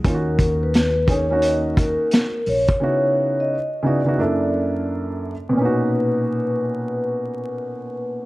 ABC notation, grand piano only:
X:1
M:4/4
L:1/16
Q:"Swing 16ths" 1/4=87
K:B
V:1 name="Grand piano"
[A,CD^EF]4 z2 [A,CDG] [A,CDF]6 z3 | [C,B,DEF]4 z2 [C,B,DEF] [C,B,DEF] [F,,A,=DE=A]6 z2 | [A,,B,,CDF]16 |]